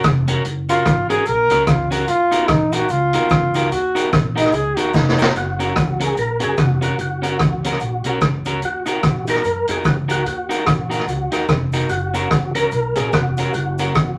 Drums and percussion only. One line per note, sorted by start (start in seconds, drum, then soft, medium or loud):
0.03 kick loud
0.03 cross-stick loud
0.03 closed hi-hat medium
0.03 cabasa medium
0.28 closed hi-hat loud
0.28 cabasa medium
0.45 closed hi-hat medium
0.45 cabasa medium
0.69 closed hi-hat medium
0.69 cabasa medium
0.85 kick loud
0.85 cross-stick loud
0.85 closed hi-hat medium
0.85 cabasa medium
1.10 closed hi-hat medium
1.10 cabasa medium
1.26 closed hi-hat medium
1.26 cabasa medium
1.50 cross-stick medium
1.50 closed hi-hat loud
1.50 cabasa medium
1.67 kick loud
1.67 cross-stick loud
1.67 closed hi-hat medium
1.67 cabasa medium
1.91 closed hi-hat medium
1.91 cabasa medium
2.08 closed hi-hat medium
2.08 cabasa medium
2.32 closed hi-hat medium
2.32 cabasa medium
2.48 kick loud
2.48 cross-stick loud
2.48 closed hi-hat medium
2.48 cabasa medium
2.72 closed hi-hat loud
2.72 cabasa medium
2.89 closed hi-hat medium
2.89 cabasa medium
3.13 closed hi-hat medium
3.13 cabasa medium
3.29 kick loud
3.29 cross-stick loud
3.29 closed hi-hat medium
3.29 cabasa medium
3.54 closed hi-hat medium
3.54 cabasa medium
3.72 closed hi-hat medium
3.72 cabasa medium
3.96 closed hi-hat medium
3.96 cabasa medium
4.12 kick loud
4.12 cross-stick loud
4.12 closed hi-hat medium
4.12 cabasa soft
4.37 closed hi-hat loud
4.37 cabasa medium
4.46 cross-stick medium
4.52 closed hi-hat medium
4.52 cabasa medium
4.77 closed hi-hat medium
4.77 cabasa medium
4.93 kick loud
4.93 snare medium
4.93 cabasa medium
5.09 snare medium
5.19 snare loud
5.19 cabasa medium
5.36 closed hi-hat medium
5.36 cabasa medium
5.60 closed hi-hat medium
5.60 cabasa medium
5.76 kick loud
5.76 cross-stick loud
5.76 closed hi-hat medium
5.76 cabasa soft
6.00 closed hi-hat medium
6.00 cabasa medium
6.17 closed hi-hat medium
6.17 cabasa medium
6.40 closed hi-hat medium
6.40 cabasa medium
6.57 kick loud
6.57 cross-stick loud
6.57 closed hi-hat medium
6.57 cabasa medium
6.82 closed hi-hat medium
6.82 cabasa medium
6.99 closed hi-hat medium
6.99 cabasa medium
7.23 closed hi-hat medium
7.23 cabasa medium
7.39 kick loud
7.39 cross-stick loud
7.39 closed hi-hat medium
7.39 cabasa soft
7.64 closed hi-hat loud
7.64 cabasa medium
7.73 cross-stick medium
7.80 closed hi-hat medium
7.80 cabasa medium
8.04 closed hi-hat medium
8.04 cabasa medium
8.21 kick loud
8.21 cross-stick loud
8.21 closed hi-hat medium
8.21 cabasa medium
8.45 closed hi-hat loud
8.45 cabasa medium
8.62 closed hi-hat medium
8.62 cabasa medium
8.86 closed hi-hat medium
8.86 cabasa medium
9.03 kick loud
9.03 cross-stick loud
9.03 closed hi-hat medium
9.03 cabasa medium
9.27 closed hi-hat medium
9.27 cabasa medium
9.36 cross-stick medium
9.44 closed hi-hat medium
9.44 cabasa medium
9.68 closed hi-hat medium
9.68 cabasa medium
9.84 kick loud
9.84 cross-stick loud
9.84 closed hi-hat medium
9.84 cabasa medium
10.09 closed hi-hat medium
10.09 cabasa medium
10.26 closed hi-hat medium
10.26 cabasa medium
10.51 closed hi-hat medium
10.51 cabasa medium
10.66 kick loud
10.66 cross-stick loud
10.66 closed hi-hat medium
10.66 cabasa soft
10.91 closed hi-hat medium
10.91 cabasa medium
11.00 cross-stick medium
11.08 closed hi-hat medium
11.08 cabasa medium
11.32 cross-stick medium
11.32 closed hi-hat medium
11.32 cabasa medium
11.49 kick loud
11.49 cross-stick loud
11.49 closed hi-hat medium
11.49 cabasa medium
11.72 closed hi-hat medium
11.72 cabasa medium
11.89 closed hi-hat medium
11.89 cabasa medium
12.14 closed hi-hat medium
12.14 cabasa medium
12.31 kick loud
12.31 cross-stick loud
12.31 closed hi-hat medium
12.31 cabasa medium
12.55 closed hi-hat loud
12.55 cabasa medium
12.71 closed hi-hat medium
12.71 cabasa medium
12.95 cross-stick medium
12.95 closed hi-hat medium
12.95 cabasa medium
13.12 kick loud
13.12 cross-stick loud
13.12 closed hi-hat medium
13.12 cabasa medium
13.37 closed hi-hat medium
13.37 cabasa medium
13.53 closed hi-hat medium
13.53 cabasa medium
13.78 closed hi-hat medium
13.78 cabasa medium
13.95 kick loud
13.95 cross-stick loud
13.95 closed hi-hat medium
13.95 cabasa soft